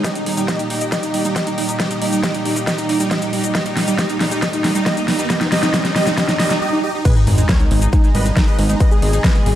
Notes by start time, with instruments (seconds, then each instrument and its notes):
Already playing: analog synth pad D#3
0.04 analog synth pad A#2 G3 D#4 G4, synth pluck G3, supersaw synth G4 D#5, digital synth lead D#5, kick, snare, closed hi-hat, riser, shaker
0.15 digital synth lead D#4, synth pluck D#4, supersaw synth D#4, closed hi-hat, shaker
0.26 synth pluck G3, supersaw synth D#4, digital synth lead D#4, open hi-hat
0.37 synth pluck G3, supersaw synth D#4, digital synth lead D#4, closed hi-hat, shaker
0.48 supersaw synth G4 D#5, digital synth lead D#5, kick, snare, closed hi-hat, shaker
0.59 synth pluck G3, supersaw synth D#4, digital synth lead D#4, closed hi-hat, shaker
0.70 synth pluck G3, supersaw synth D#4, digital synth lead D#4, open hi-hat
0.81 synth pluck D#4, closed hi-hat, shaker
0.92 synth pluck G3, supersaw synth G4 D#5, digital synth lead D#5, kick, snare, closed hi-hat, shaker
1.03 supersaw synth D#4, synth pluck D#4, digital synth lead D#4, closed hi-hat, shaker
1.14 synth pluck G3, supersaw synth D#4, digital synth lead D#4, open hi-hat
1.25 synth pluck G3, supersaw synth D#4, digital synth lead D#4, closed hi-hat, shaker
1.36 supersaw synth G4 D#5, digital synth lead D#5, kick, snare, closed hi-hat, shaker
1.47 synth pluck G3, supersaw synth D#4, digital synth lead D#4, closed hi-hat, shaker
1.58 synth pluck G3, supersaw synth D#4, digital synth lead D#4, open hi-hat
1.69 synth pluck D#4, closed hi-hat, shaker
1.79 synth pluck G3, supersaw synth G4 D#5, digital synth lead D#5, kick, snare, closed hi-hat, shaker
1.90 supersaw synth D#4, synth pluck D#4, digital synth lead D#4, closed hi-hat, shaker
2.02 synth pluck G3, supersaw synth D#4, digital synth lead D#4, open hi-hat
2.12 synth pluck G3, supersaw synth D#4, digital synth lead D#4, closed hi-hat, shaker
2.23 synth pluck G3, supersaw synth G4 D#5, digital synth lead D#5, kick, snare, closed hi-hat, shaker
2.34 synth pluck G3, digital synth lead D#4, supersaw synth D#4, closed hi-hat, shaker
2.45 synth pluck G3, digital synth lead D#4, supersaw synth D#4, open hi-hat
2.56 synth pluck D#4, closed hi-hat, shaker
2.67 synth pluck G3, supersaw synth G4 D#5, digital synth lead D#5, kick, snare, closed hi-hat, shaker
2.78 synth pluck D#4, digital synth lead D#4, supersaw synth D#4, closed hi-hat, shaker
2.89 synth pluck G3, digital synth lead D#4, supersaw synth D#4, open hi-hat
3.00 synth pluck G3, digital synth lead D#4, supersaw synth D#4, closed hi-hat, shaker
3.11 synth pluck G3, supersaw synth G4 D#5, digital synth lead D#5, kick, snare, closed hi-hat, shaker
3.22 synth pluck G3, digital synth lead D#4, supersaw synth D#4, closed hi-hat, shaker
3.33 synth pluck G3, digital synth lead D#4, supersaw synth D#4, open hi-hat
3.44 synth pluck D#4, closed hi-hat, shaker
3.55 synth pluck G3, supersaw synth G4 D#5, digital synth lead D#5, kick, snare, closed hi-hat, shaker
3.66 digital synth lead D#4, synth pluck D#4, supersaw synth D#4, closed hi-hat, shaker
3.77 synth pluck G3, digital synth lead D#4, supersaw synth D#4, snare, open hi-hat
3.88 synth pluck G3, digital synth lead D#4, supersaw synth D#4, closed hi-hat, shaker
3.98 supersaw synth G4 D#5, digital synth lead D#5, kick, snare, closed hi-hat, shaker
4.09 digital synth lead D#4, supersaw synth D#4, synth pluck D#4, closed hi-hat, shaker
4.20 synth pluck G3, supersaw synth D#4, digital synth lead D#4, snare, open hi-hat
4.31 synth pluck G3, supersaw synth D#4, digital synth lead D#4, closed hi-hat, shaker
4.42 synth pluck G3, supersaw synth G4 D#5, digital synth lead D#5, kick, snare, closed hi-hat, shaker
4.53 supersaw synth D#4, synth pluck D#4, digital synth lead D#4, closed hi-hat, shaker
4.64 synth pluck G3, supersaw synth D#4, digital synth lead D#4, snare, open hi-hat
4.75 synth pluck G3, supersaw synth D#4, digital synth lead D#4, closed hi-hat, shaker
4.86 synth pluck G3, supersaw synth G4 D#5, digital synth lead D#5, kick, snare, closed hi-hat, shaker
4.97 digital synth lead D#4, supersaw synth D#4, synth pluck D#4, closed hi-hat, shaker
5.08 synth pluck G3, digital synth lead D#4, supersaw synth D#4, snare, open hi-hat
5.19 synth pluck G3, digital synth lead D#4, supersaw synth D#4, closed hi-hat, shaker
5.30 synth pluck G3, supersaw synth G4 D#5, digital synth lead D#5, kick, snare, closed hi-hat, shaker
5.41 synth pluck D#4, digital synth lead D#4, supersaw synth D#4, snare, closed hi-hat, shaker
5.52 synth pluck G3, supersaw synth G4 D#5, digital synth lead D#5, snare, open hi-hat
5.63 synth pluck D#4, digital synth lead D#4, supersaw synth D#4, snare, closed hi-hat, shaker
5.74 synth pluck G3, supersaw synth G4 D#5, digital synth lead D#5, kick, snare, closed hi-hat, shaker
5.85 digital synth lead D#4, synth pluck D#4, supersaw synth D#4, snare, closed hi-hat, shaker
5.96 synth pluck G3, supersaw synth G4 D#5, digital synth lead D#5, snare, open hi-hat
6.07 digital synth lead D#4, supersaw synth D#4, synth pluck D#4, snare, closed hi-hat, shaker
6.17 synth pluck G3, supersaw synth G4 D#5, digital synth lead D#5, kick, snare, closed hi-hat, shaker
6.28 digital synth lead D#4, synth pluck D#4, supersaw synth D#4, snare, closed hi-hat, shaker
6.39 synth pluck G3, supersaw synth G4 D#5, digital synth lead D#5, snare, open hi-hat
6.50 digital synth lead D#4, synth pluck D#4, supersaw synth D#4, snare, closed hi-hat, shaker
6.61 supersaw synth G4 D#5
6.73 supersaw synth D#4
6.83 supersaw synth G4 D#5
6.94 supersaw synth D#4
7.05 analog synth pad B2 D#3 G#3 D#4 G#4, synth pluck G#3, supersaw synth G#4 B4, digital synth lead B4, kick, closed hi-hat, crash, sub drop, shaker
7.16 digital synth lead D#4, synth pluck D#4, supersaw synth D#4, shaker
7.27 analog synth bass G#1, synth pluck G#3, supersaw synth D#4, digital synth lead D#4, open hi-hat
7.38 synth pluck G#3, supersaw synth D#4, digital synth lead D#4, closed hi-hat, shaker
7.49 synth pluck G3, supersaw synth A#4 C#5, digital synth lead C#5, kick, snare, closed hi-hat, shaker
7.60 synth pluck G#3, supersaw synth D#4, digital synth lead D#4, shaker
7.71 analog synth bass G#1, synth pluck G#3, supersaw synth D#4, digital synth lead D#4, open hi-hat
7.82 synth pluck D#4, closed hi-hat, shaker
7.93 synth pluck G#3, digital synth lead D#4, supersaw synth D#4, kick, closed hi-hat, shaker
8.04 synth pluck G#3, digital synth lead D#4, supersaw synth D#4, shaker
8.15 analog synth bass G#1, synth pluck G3, supersaw synth B4 D#5, digital synth lead D#5, open hi-hat
8.26 synth pluck G#3, digital synth lead D#4, supersaw synth D#4, closed hi-hat, shaker
8.37 synth pluck G#3, digital synth lead D#4, supersaw synth D#4, kick, snare, closed hi-hat, shaker
8.48 synth pluck D#4, supersaw synth B4 D#5, digital synth lead D#5, shaker
8.59 analog synth bass G#1, synth pluck G#3, supersaw synth D#4, digital synth lead D#4, open hi-hat
8.69 synth pluck G#3, supersaw synth D#4, digital synth lead D#4, closed hi-hat, shaker
8.80 synth pluck G3, supersaw synth B4 D#5, digital synth lead D#5, kick, closed hi-hat, shaker
8.91 synth pluck G#3, supersaw synth G#4, digital synth lead G#4, shaker
9.02 analog synth bass G#1, synth pluck G#3, supersaw synth G#4, digital synth lead G#4, open hi-hat
9.13 synth pluck D#4, supersaw synth G#4, digital synth lead G#4, closed hi-hat, shaker
9.24 synth pluck G#3, supersaw synth B4 D#5, digital synth lead D#5, kick, snare, closed hi-hat, shaker
9.35 synth pluck G#3, digital synth lead G#4, supersaw synth G#4, shaker
9.46 analog synth bass G#1, synth pluck G3, digital synth lead G#4, supersaw synth G#4, open hi-hat